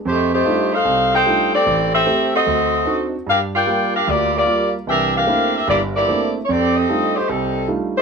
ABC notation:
X:1
M:4/4
L:1/16
Q:"Swing" 1/4=149
K:F
V:1 name="Saxophone section"
[A,_EGc]2 [A,EGc]4 [EAcf]4 [EAcg]4 [CGAd]2- | [CGAd]2 [CGAe]4 [C_GA_e]8 z2 | [DGBf]2 [FBdg]4 [DGBf]2 [B,FGd]2 [B,FGd]4 z2 | [DGBe]2 [DGBf]4 [DGBe]2 [B,EGd]2 [B,EGd]4 z3/2 _d/2 |
[CGAd]2 [CGA_e]4 [A,_EGc]2 [G,CEA]4 z2 [A,EGc]2 |]
V:2 name="Grand piano"
F,,4 [G,A,D_EF]2 z2 C,,4 [G,A,DEF]2 z2 | A,,,4 [A,CG]2 z2 D,,4 [CD_E^F]2 z2 | G,,4 [G,B,F]2 z2 D,,4 [G,B,F]2 z2 | [C,,E,]4 [A,B,CDE]2 z2 [G,,,G,,]4 [A,B,CDE]2 z2 |
F,,4 [G,A,D_EF]2 z2 C,,4 [G,A,DEF]2 z2 |]